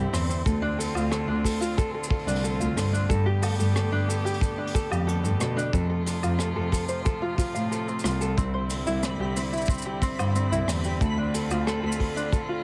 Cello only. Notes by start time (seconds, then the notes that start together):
0.13 E2
0.46 D2
0.95 D2
1.28 D2
2.27 C2
2.60 D2
2.76 G2
3.10 G2
3.59 G2
3.92 G2
4.91 F2
5.24 G2
5.40 B2
5.73 F2
6.23 F2
6.56 F2
7.55 A2
8.04 C2
8.38 C2
8.87 C2
9.19 C2
10.19 G2
10.52 C2
10.68 E2
11.01 D2
11.51 D2
11.83 D2